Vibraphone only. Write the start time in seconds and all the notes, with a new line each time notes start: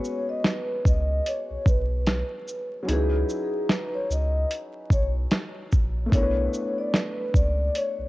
Already playing: C#5
0.29 D#5
0.47 B4
0.87 D#5
1.27 C#5
1.68 B4
2.90 G#4
3.71 B4
3.94 C#5
4.12 D#5
4.93 C#5
6.14 C#5
6.78 D5
6.95 B4
7.36 D5
7.76 C#5